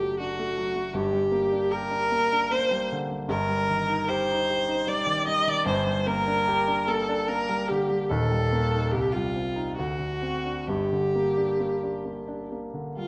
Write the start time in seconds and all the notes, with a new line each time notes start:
Already playing: F#1 F#2 F#3 A3 D4 G4
0.03 F#3
0.20 D4 F#4
0.39 A3
0.58 F#3
0.76 A3
0.94 G1 G2 G4
1.13 G3
1.32 A#3
1.53 D4
1.71 G4 A#4
1.91 D4
2.12 A#3
2.32 D4
2.51 A#3 C5
2.71 G3
2.92 D3
3.11 G3
3.28 G1 G2 A#4
3.49 G3
3.70 D#3
3.89 D#4
4.08 G4 C5
4.32 D#4
4.50 G4
4.68 D#4
4.87 G3 D5
5.07 D#3
5.27 G3 D#5
5.47 D#3 D5
5.66 G1 G2 C5
5.87 G3
6.07 A#3 A#4
6.27 D4
6.48 G4
6.68 D4
6.87 A#3 A4
7.09 D4
7.28 A#3 A#4
7.49 G3
7.68 D3 G4
7.90 G3
8.08 D#1 D#2 A4
8.31 G3
8.52 A#3
8.74 D#4
8.91 C2 G4
9.12 F4
9.16 G3
9.35 C4
9.56 D#4
9.77 D2 F#4
9.99 D3
10.22 C4
10.45 D4
10.67 G1 G2 G4
10.92 D3
11.15 A#3
11.37 D4
11.60 A#3
11.83 D4
12.05 A#3
12.28 D4
12.52 A#3
12.74 D3
12.97 G3 F4